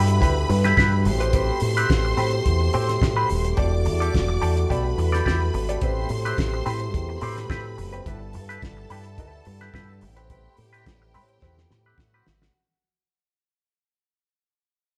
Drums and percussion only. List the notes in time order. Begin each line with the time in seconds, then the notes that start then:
0.08 closed hi-hat
0.22 kick, closed hi-hat
0.50 open hi-hat
0.65 snare, closed hi-hat
0.77 kick, snare, closed hi-hat
1.05 open hi-hat
1.21 closed hi-hat
1.33 kick, closed hi-hat
1.60 open hi-hat
1.77 closed hi-hat
1.90 kick, snare, closed hi-hat
2.17 open hi-hat
2.31 closed hi-hat
2.46 kick, closed hi-hat
2.73 open hi-hat
2.89 snare, closed hi-hat
3.02 kick, snare, closed hi-hat
3.29 open hi-hat
3.44 closed hi-hat
3.57 kick, closed hi-hat
3.85 open hi-hat
4.02 closed hi-hat
4.14 kick, snare, closed hi-hat
4.42 open hi-hat
4.57 closed hi-hat
4.70 kick, closed hi-hat
4.98 open hi-hat
5.14 snare, closed hi-hat
5.26 kick, snare, closed hi-hat
5.54 open hi-hat
5.69 closed hi-hat
5.81 kick, closed hi-hat
6.09 open hi-hat
6.26 closed hi-hat
6.38 kick, snare, closed hi-hat
6.66 open hi-hat
6.80 closed hi-hat
6.94 kick, closed hi-hat
7.21 open hi-hat
7.37 snare, closed hi-hat
7.50 kick, snare, closed hi-hat
7.78 open hi-hat
7.93 closed hi-hat
8.06 kick, closed hi-hat
8.33 open hi-hat
8.50 closed hi-hat
8.62 kick, snare, closed hi-hat
8.90 open hi-hat
9.04 closed hi-hat
9.18 kick, closed hi-hat
9.45 open hi-hat
9.61 snare, closed hi-hat
9.74 kick, snare, closed hi-hat
10.01 open hi-hat
10.17 closed hi-hat
10.30 kick, closed hi-hat
10.57 open hi-hat
10.74 closed hi-hat
10.86 kick, snare, closed hi-hat
11.14 open hi-hat
11.28 closed hi-hat
11.42 kick, snare
11.58 snare
11.71 snare
11.98 kick, snare
12.27 snare
12.42 snare